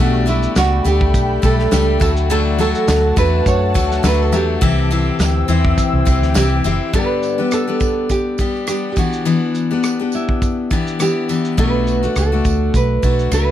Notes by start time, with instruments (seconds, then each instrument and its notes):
Already playing: steel-string acoustic guitar B2, ambient pad A4
0.00 fingered electric bass B1, steel-string acoustic guitar G3 A3 D4 G4, nylon-string guitar F#4, ambient pad G5 B5
0.26 steel-string acoustic guitar G3 A3 D4 G4, nylon-string guitar E4, tambourine, shaker
0.43 shaker
0.56 fingered electric bass C#2, nylon-string guitar F#4, snare, tambourine, shaker
0.84 fingered electric bass D2, steel-string acoustic guitar G3 A3 D4 G4, nylon-string guitar G4, tambourine, shaker
1.01 kick
1.14 fingered electric bass B1, kick, tambourine, shaker
1.42 fingered electric bass B1, steel-string acoustic guitar G3 A3 D4 G4, nylon-string guitar A4, kick, tambourine, shaker
1.59 snare
1.71 fingered electric bass C#2, steel-string acoustic guitar G3 A3 D4 G4, snare, tambourine, shaker
2.00 fingered electric bass D2, steel-string acoustic guitar F#3 A3 D4 F#4, nylon-string guitar A4, ambient pad F#5 A5, kick, tambourine, shaker
2.17 shaker
2.30 steel-string acoustic guitar D3 F#3 A3 D4 F#4, nylon-string guitar A4, shaker
2.59 steel-string acoustic guitar F#3 A3 D4 F#4, nylon-string guitar A4, tambourine, shaker
2.75 shaker
2.88 fingered electric bass D2, snare, tambourine, shaker
3.16 fingered electric bass E2, steel-string acoustic guitar F#3 A3 D4 F#4, nylon-string guitar B4, kick, tambourine, shaker
3.46 fingered electric bass F#2, nylon-string guitar C#5, kick, tambourine, shaker
3.74 fingered electric bass D2, steel-string acoustic guitar F#3 A3 D4 F#4, kick, tambourine, shaker
3.92 snare, shaker
4.03 fingered electric bass D2, steel-string acoustic guitar F#3 A3 D4 F#4, nylon-string guitar B4, snare, tambourine, shaker
4.22 nylon-string guitar A4
4.32 fingered electric bass E2, steel-string acoustic guitar F#3 A3 D4 F#4, nylon-string guitar G4, tambourine, shaker
4.61 fingered electric bass C2, steel-string acoustic guitar C3 E3 C4 E4 G4, ambient pad C5 G5 E6, kick, shaker
4.91 steel-string acoustic guitar E3 C4 E4 G4, shaker
5.19 fingered electric bass D2, snare, tambourine, shaker
5.48 fingered electric bass E2, steel-string acoustic guitar E3 C4 E4 G4, tambourine, shaker
5.65 kick
5.78 kick, tambourine, shaker
5.93 fingered electric bass C2
6.05 fingered electric bass C2, steel-string acoustic guitar E3 C4 E4 G4, kick, tambourine, shaker
6.22 fingered electric bass D2, snare, shaker
6.34 fingered electric bass C2, steel-string acoustic guitar E3 C4 E4 G4, nylon-string guitar G4, snare, tambourine, shaker
6.64 fingered electric bass F#1, steel-string acoustic guitar E3 C4 E4 G4, tambourine, shaker
6.93 steel-string acoustic guitar G2 D3 G3 B3 D4 G4, nylon-string guitar B4, kick, tambourine, shaker
7.23 tambourine, shaker
7.38 steel-string acoustic guitar G3 B3 D4 G4
7.51 nylon-string guitar A4, cross-stick, tambourine, shaker
7.68 steel-string acoustic guitar G3 B3 D4 G4
7.80 kick, tambourine, shaker
8.09 nylon-string guitar G4, kick, tambourine, shaker
8.38 steel-string acoustic guitar G3 B3 D4 G4, kick, tambourine, shaker
8.55 cross-stick
8.67 steel-string acoustic guitar G3 B3 D4 G4, nylon-string guitar G4, cross-stick, tambourine, shaker
8.92 nylon-string guitar G4, tambourine
8.97 steel-string acoustic guitar E3 B3 D4 G4, nylon-string guitar F#4, kick, shaker
9.13 shaker
9.25 steel-string acoustic guitar E3 B3 D4, tambourine, shaker
9.55 tambourine, shaker
9.71 steel-string acoustic guitar B3 D4 G4
9.83 cross-stick, tambourine, shaker
10.00 steel-string acoustic guitar B3 D4 G4
10.12 nylon-string guitar E4, tambourine, shaker
10.29 kick
10.42 kick, tambourine, shaker
10.71 steel-string acoustic guitar E3 B3 D4 G4, kick, tambourine, shaker
10.87 shaker
10.99 steel-string acoustic guitar E3 B3 D4 G4, nylon-string guitar G4, cross-stick, tambourine, shaker
11.29 steel-string acoustic guitar E3 B3 D4 G4, tambourine, shaker
11.45 shaker
11.57 fingered electric bass B1, steel-string acoustic guitar B2 F#3 A3 D4 F#4, nylon-string guitar B4, kick, shaker
11.87 tambourine, shaker
12.03 steel-string acoustic guitar A3 D4 F#4, nylon-string guitar A4, shaker
12.16 fingered electric bass C#2, nylon-string guitar A4, cross-stick, tambourine, shaker
12.32 steel-string acoustic guitar A3 D4 F#4
12.45 fingered electric bass D2, kick, tambourine, shaker
12.74 fingered electric bass B1, nylon-string guitar B4, kick, tambourine, shaker
13.02 fingered electric bass B1, steel-string acoustic guitar F#3 A3 D4 F#4, kick, tambourine, shaker
13.19 cross-stick, shaker
13.31 fingered electric bass C#2, steel-string acoustic guitar F#3 A3 D4 F#4, nylon-string guitar B4, cross-stick, tambourine, shaker